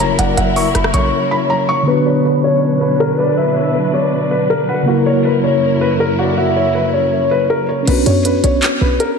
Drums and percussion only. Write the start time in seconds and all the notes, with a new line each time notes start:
0.19 closed hi-hat
0.37 closed hi-hat
0.56 open hi-hat
0.75 cross-stick, closed hi-hat
0.84 cross-stick
0.94 closed hi-hat
7.87 closed hi-hat, crash
8.06 closed hi-hat
8.25 closed hi-hat
8.44 closed hi-hat
8.63 clap, closed hi-hat
9.00 closed hi-hat